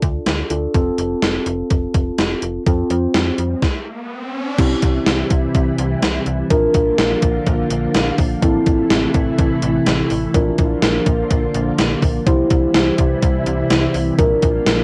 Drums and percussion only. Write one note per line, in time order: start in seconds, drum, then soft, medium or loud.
0.02 kick medium
0.02 closed hi-hat medium
0.26 snare loud
0.26 closed hi-hat medium
0.50 closed hi-hat medium
0.74 kick loud
0.74 closed hi-hat medium
0.98 closed hi-hat medium
1.22 snare loud
1.22 closed hi-hat medium
1.46 closed hi-hat medium
1.70 kick medium
1.70 closed hi-hat medium
1.94 kick medium
1.94 closed hi-hat medium
2.18 snare loud
2.18 closed hi-hat medium
2.42 closed hi-hat medium
2.66 kick loud
2.66 closed hi-hat medium
2.90 closed hi-hat medium
3.14 snare loud
3.14 closed hi-hat medium
3.38 closed hi-hat medium
3.62 kick loud
3.62 snare medium
4.58 kick loud
4.58 closed hi-hat medium
4.58 crash medium
4.82 kick medium
4.82 closed hi-hat medium
5.06 snare loud
5.06 closed hi-hat medium
5.30 kick medium
5.30 closed hi-hat medium
5.54 kick medium
5.54 closed hi-hat medium
5.78 closed hi-hat medium
6.02 snare loud
6.02 closed hi-hat medium
6.26 closed hi-hat medium
6.50 kick loud
6.50 closed hi-hat medium
6.74 kick medium
6.74 closed hi-hat medium
6.98 snare loud
6.98 closed hi-hat medium
7.22 kick medium
7.22 closed hi-hat medium
7.46 kick medium
7.46 closed hi-hat medium
7.70 closed hi-hat medium
7.94 snare loud
7.94 closed hi-hat medium
8.18 kick medium
8.18 open hi-hat medium
8.42 kick loud
8.42 closed hi-hat medium
8.66 kick medium
8.66 closed hi-hat medium
8.90 snare loud
8.90 closed hi-hat medium
9.14 kick medium
9.14 closed hi-hat medium
9.38 kick loud
9.38 closed hi-hat medium
9.62 closed hi-hat medium
9.86 snare loud
9.86 closed hi-hat medium
10.10 open hi-hat medium
10.34 kick loud
10.34 closed hi-hat medium
10.58 kick medium
10.58 closed hi-hat medium
10.82 snare loud
10.82 closed hi-hat medium
11.06 kick medium
11.06 closed hi-hat medium
11.31 kick medium
11.31 closed hi-hat medium
11.54 closed hi-hat medium
11.78 snare loud
11.78 closed hi-hat medium
12.02 kick medium
12.02 open hi-hat medium
12.26 kick loud
12.26 closed hi-hat medium
12.50 kick medium
12.50 closed hi-hat medium
12.74 snare loud
12.74 closed hi-hat medium
12.98 kick medium
12.98 closed hi-hat medium
13.22 kick loud
13.22 closed hi-hat medium
13.46 closed hi-hat medium
13.70 snare loud
13.70 closed hi-hat medium
13.94 open hi-hat medium
14.18 kick loud
14.18 closed hi-hat medium
14.42 kick medium
14.42 closed hi-hat medium
14.66 snare loud
14.66 closed hi-hat medium